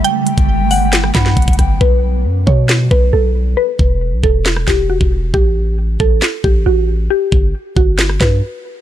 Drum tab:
HH |x---x-x-----o---x---x---xxxxx---|--------------------------------|--------------------------------|--------------------------------|
CP |----------------x---x-----------|----------------x---------------|----------------x---x-----------|----------------x---------------|
SD |----------------o-r-o-o-----r---|----------------o---------------|----------------o-r-o-----------|----------------o---------------|
BD |------o-------------o---o-o-o---|o-----------o-------o-----------|----o-------o-------o-----o-----|o-----------o-------o-----------|

HH |--------------------------------|
CP |----------------x---x-----------|
SD |----------------o-r-o-----------|
BD |----o-------o-------o-----------|